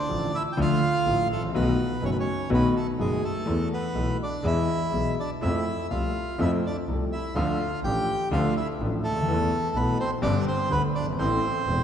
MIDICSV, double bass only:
0, 0, Header, 1, 2, 480
1, 0, Start_track
1, 0, Tempo, 482315
1, 1542, Time_signature, 4, 2, 24, 8
1, 11779, End_track
2, 0, Start_track
2, 0, Title_t, "Double bass"
2, 0, Program_c, 0, 43
2, 99, Note_on_c, 0, 33, 59
2, 305, Note_off_c, 0, 33, 0
2, 582, Note_on_c, 0, 38, 86
2, 786, Note_off_c, 0, 38, 0
2, 1056, Note_on_c, 0, 33, 62
2, 1261, Note_off_c, 0, 33, 0
2, 1297, Note_on_c, 0, 33, 57
2, 1529, Note_off_c, 0, 33, 0
2, 1535, Note_on_c, 0, 35, 81
2, 1738, Note_off_c, 0, 35, 0
2, 2007, Note_on_c, 0, 30, 63
2, 2212, Note_off_c, 0, 30, 0
2, 2489, Note_on_c, 0, 35, 90
2, 2691, Note_off_c, 0, 35, 0
2, 2962, Note_on_c, 0, 30, 66
2, 3167, Note_off_c, 0, 30, 0
2, 3449, Note_on_c, 0, 40, 78
2, 3653, Note_off_c, 0, 40, 0
2, 3925, Note_on_c, 0, 35, 62
2, 4132, Note_off_c, 0, 35, 0
2, 4407, Note_on_c, 0, 40, 82
2, 4618, Note_off_c, 0, 40, 0
2, 4907, Note_on_c, 0, 35, 55
2, 5112, Note_off_c, 0, 35, 0
2, 5388, Note_on_c, 0, 41, 81
2, 5594, Note_off_c, 0, 41, 0
2, 5882, Note_on_c, 0, 36, 57
2, 6084, Note_off_c, 0, 36, 0
2, 6351, Note_on_c, 0, 41, 81
2, 6560, Note_off_c, 0, 41, 0
2, 6841, Note_on_c, 0, 36, 61
2, 7044, Note_off_c, 0, 36, 0
2, 7317, Note_on_c, 0, 38, 86
2, 7521, Note_off_c, 0, 38, 0
2, 7797, Note_on_c, 0, 33, 65
2, 8000, Note_off_c, 0, 33, 0
2, 8275, Note_on_c, 0, 38, 80
2, 8477, Note_off_c, 0, 38, 0
2, 8755, Note_on_c, 0, 33, 66
2, 8956, Note_off_c, 0, 33, 0
2, 8988, Note_on_c, 0, 38, 55
2, 9213, Note_off_c, 0, 38, 0
2, 9219, Note_on_c, 0, 40, 92
2, 9425, Note_off_c, 0, 40, 0
2, 9697, Note_on_c, 0, 35, 67
2, 9903, Note_off_c, 0, 35, 0
2, 10178, Note_on_c, 0, 31, 92
2, 10382, Note_off_c, 0, 31, 0
2, 10656, Note_on_c, 0, 38, 68
2, 10860, Note_off_c, 0, 38, 0
2, 10892, Note_on_c, 0, 31, 54
2, 11125, Note_off_c, 0, 31, 0
2, 11131, Note_on_c, 0, 33, 84
2, 11337, Note_off_c, 0, 33, 0
2, 11609, Note_on_c, 0, 28, 63
2, 11779, Note_off_c, 0, 28, 0
2, 11779, End_track
0, 0, End_of_file